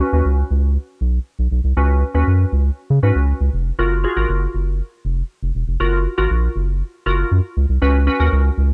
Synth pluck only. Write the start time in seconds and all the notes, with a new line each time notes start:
0.00 C#4 F#4 B4
0.13 C#4 F#4 B4
1.77 C#4 F#4 B4
2.15 C#4 F#4 B4
3.03 C#4 F#4 B4
3.79 F4 F#4 A#4
4.04 F4 F#4 G#4
4.16 F4 F#4 A#4
5.80 F4 F#4 A#4
6.18 F4 F#4 A#4
7.06 F4 F#4 A#4
7.82 C#4 F#4 B4
8.07 C#4 F#4 B4
8.20 C#4 F#4 A#4